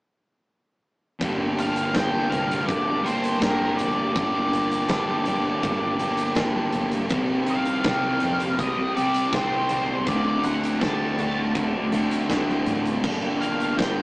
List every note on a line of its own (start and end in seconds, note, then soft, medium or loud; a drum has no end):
1.21 1.85 G1 medium
1.21 4.15 G2 medium
1.21 2.32 D3 medium
1.21 1.95 G3 medium
1.21 1.96 A#3 loud
1.21 1.97 D4 medium
1.21 1.98 G4 loud
1.21 kick loud
1.21 closed hi-hat medium
1.59 1.97 F5 loud
1.59 closed hi-hat medium
1.76 closed hi-hat medium
1.94 2.27 G1 medium
1.94 2.65 G2 medium
1.94 2.67 D3 medium
1.94 2.33 G3 medium
1.94 2.32 A#3 medium
1.94 2.31 D4 medium
1.94 2.33 G5 loud
1.94 kick loud
1.94 snare loud
1.94 closed hi-hat medium
1.98 2.30 G4 medium
2.30 2.63 C2 medium
2.30 3.07 G3 medium
2.30 3.06 A#3 medium
2.30 3.04 D4 medium
2.30 3.03 G4 medium
2.30 2.66 F5 medium
2.30 closed hi-hat medium
2.51 closed hi-hat medium
2.66 3.32 G1 medium
2.66 3.38 G2 medium
2.66 3.04 D3 medium
2.66 3.02 G3 medium
2.66 3.06 D5 medium
2.66 kick loud
2.66 closed hi-hat medium
3.03 3.40 D3 medium
3.03 3.42 G3 medium
3.03 3.43 A#3 medium
3.03 3.42 D4 medium
3.03 3.44 G4 medium
3.03 3.42 C5 medium
3.03 closed hi-hat medium
3.07 3.42 G3 medium
3.24 closed hi-hat medium
3.39 3.74 G1 medium
3.39 4.12 G2 medium
3.39 4.13 D3 medium
3.39 4.16 G3 medium
3.39 4.16 A#3 medium
3.39 3.80 A#4 medium
3.39 kick loud
3.39 snare loud
3.39 closed hi-hat medium
3.44 4.16 D4 medium
3.44 4.17 G4 medium
3.76 4.11 F1 medium
3.76 4.12 D5 medium
3.76 closed hi-hat medium
4.13 4.48 G1 loud
4.13 5.26 G2 medium
4.13 5.27 D3 loud
4.13 4.88 G3 medium
4.13 4.89 A#3 loud
4.13 6.32 D5 medium
4.13 kick loud
4.13 closed hi-hat medium
4.17 4.89 D4 loud
4.17 4.90 G4 loud
4.53 4.85 G1 medium
4.53 closed hi-hat medium
4.71 closed hi-hat medium
4.88 5.21 G1 medium
4.88 5.61 G2 medium
4.88 5.62 D3 medium
4.88 5.29 G3 medium
4.88 5.28 A#3 medium
4.88 5.27 D4 medium
4.88 5.26 G4 loud
4.88 kick loud
4.88 snare loud
4.88 closed hi-hat medium
5.26 5.59 G1 medium
5.26 6.00 G3 medium
5.26 5.99 A#3 medium
5.26 5.98 D4 medium
5.26 5.97 G4 medium
5.26 closed hi-hat medium
5.62 5.95 G1 loud
5.62 6.35 G2 medium
5.62 5.99 D3 medium
5.62 5.97 G3 loud
5.62 kick loud
5.62 closed hi-hat medium
5.98 6.33 G1 medium
5.98 6.37 D3 medium
5.98 6.35 G3 medium
5.98 6.36 A#3 medium
5.98 6.37 D4 medium
5.98 6.38 G4 medium
5.98 closed hi-hat medium
6.17 closed hi-hat medium
6.35 6.69 G1 medium
6.35 7.09 G2 medium
6.35 7.09 D3 medium
6.35 7.09 G3 medium
6.35 7.09 A#3 medium
6.35 7.09 D4 medium
6.35 7.10 G4 medium
6.35 kick loud
6.35 snare loud
6.35 closed hi-hat medium
6.73 7.10 G1 medium
6.73 closed hi-hat medium
6.92 closed hi-hat medium
7.09 7.74 C2 loud
7.09 8.22 C3 medium
7.09 7.83 D#3 loud
7.09 7.85 G3 loud
7.09 7.86 C4 loud
7.09 7.86 G4 loud
7.09 kick loud
7.09 closed hi-hat medium
7.46 8.56 F5 medium
7.46 closed hi-hat medium
7.65 closed hi-hat medium
7.84 8.17 C2 medium
7.84 8.58 C3 medium
7.84 8.59 D#3 medium
7.84 8.23 G3 loud
7.84 8.23 C4 medium
7.84 8.21 G4 medium
7.84 kick loud
7.84 snare loud
7.84 closed hi-hat medium
8.20 8.55 F2 medium
8.20 8.96 C4 medium
8.20 8.94 G4 medium
8.20 closed hi-hat medium
8.24 8.96 G3 medium
8.40 closed hi-hat medium
8.59 9.23 C2 loud
8.59 9.30 C3 medium
8.59 8.97 G3 loud
8.59 8.95 C4 loud
8.59 8.94 D#5 medium
8.59 kick loud
8.59 closed hi-hat medium
8.95 9.32 G3 medium
8.95 9.33 C4 medium
8.95 9.33 G4 medium
8.95 9.34 D5 medium
8.95 closed hi-hat medium
9.14 closed hi-hat medium
9.31 9.65 C2 medium
9.31 10.04 C3 medium
9.31 10.04 D#3 medium
9.31 10.05 G3 medium
9.31 10.07 C4 medium
9.31 10.06 G4 medium
9.31 9.72 C5 medium
9.31 kick loud
9.31 snare loud
9.31 closed hi-hat medium
9.69 10.02 C2 medium
9.69 10.10 C5 medium
9.69 closed hi-hat medium
10.06 10.39 D2 loud
10.06 10.80 D3 loud
10.06 10.81 A3 medium
10.06 10.82 C4 loud
10.06 10.82 D4 loud
10.06 10.82 F#4 medium
10.06 10.45 D5 loud
10.06 kick loud
10.06 closed hi-hat medium
10.43 10.76 D2 loud
10.43 10.80 F#5 medium
10.43 closed hi-hat medium
10.63 closed hi-hat medium
10.81 11.13 D2 medium
10.81 11.56 D3 medium
10.81 11.21 A3 medium
10.81 11.20 C4 medium
10.81 11.57 D4 medium
10.81 11.18 F#4 medium
10.81 11.51 A5 loud
10.81 kick loud
10.81 snare loud
10.81 closed hi-hat medium
11.18 11.50 D2 medium
11.18 11.95 A3 medium
11.18 11.94 C4 medium
11.18 11.92 F#4 medium
11.18 closed hi-hat medium
11.54 11.88 D2 medium
11.54 12.28 D3 medium
11.54 11.94 A3 medium
11.54 11.91 D4 loud
11.54 kick loud
11.54 closed hi-hat medium
11.91 12.24 D2 loud
11.91 12.29 A3 medium
11.91 12.30 C4 medium
11.91 12.31 D4 medium
11.91 12.30 F#4 medium
11.91 closed hi-hat medium
12.11 closed hi-hat medium
12.29 12.62 D2 medium
12.29 13.02 D3 medium
12.29 13.05 A3 medium
12.29 13.05 C4 medium
12.29 14.02 D4 medium
12.29 13.03 F#4 medium
12.29 kick loud
12.29 snare loud
12.29 closed hi-hat medium
12.49 snare soft
12.66 12.98 A1 medium
12.66 closed hi-hat medium
12.86 closed hi-hat medium
13.03 13.68 G1 loud
13.03 14.02 G2 medium
13.03 14.02 D3 loud
13.03 13.78 G3 loud
13.03 13.79 A#3 loud
13.03 13.79 D4 loud
13.03 13.80 G4 loud
13.03 kick loud
13.03 crash medium
13.41 13.79 F5 loud
13.41 closed hi-hat medium
13.60 closed hi-hat medium
13.77 14.02 G1 medium
13.77 14.02 G2 medium
13.77 14.02 D3 medium
13.77 14.02 G3 medium
13.77 14.02 A#3 medium
13.77 14.02 D4 medium
13.77 14.02 G4 medium
13.77 14.02 G5 medium
13.77 kick loud
13.77 snare loud
13.77 closed hi-hat medium